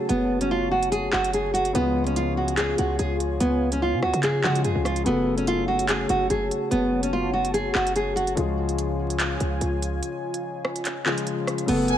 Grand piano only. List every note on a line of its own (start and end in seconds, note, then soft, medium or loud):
0.00 1.70 C#3 medium
0.00 1.70 F#3 medium
0.00 1.71 A3 medium
0.00 1.71 F#4 medium
0.00 1.72 A4 medium
1.73 4.39 C#3 medium
1.73 4.39 F3 medium
1.73 4.40 G#3 medium
1.73 4.40 F4 medium
1.73 4.41 G#4 medium
4.43 5.02 C#3 medium
4.43 5.06 F3 medium
4.43 5.06 G#3 medium
4.43 5.06 F4 soft
4.43 5.07 G#4 medium
5.04 8.32 C#3 medium
5.04 8.32 F#3 medium
5.04 8.33 A3 medium
5.04 8.33 F#4 medium
5.04 8.34 A4 medium
8.35 11.01 C#3 medium
8.35 11.02 F3 medium
8.35 11.02 G#3 medium
8.35 11.03 F4 medium
8.35 11.03 G#4 medium
11.05 11.65 C#3 medium
11.05 11.68 F3 medium
11.05 11.68 G#3 medium
11.05 11.68 F4 soft
11.05 11.69 G#4 medium
11.66 11.98 C#3 medium
11.66 11.98 F#3 medium
11.66 11.98 A3 medium
11.66 11.98 F#4 medium
11.66 11.98 A4 medium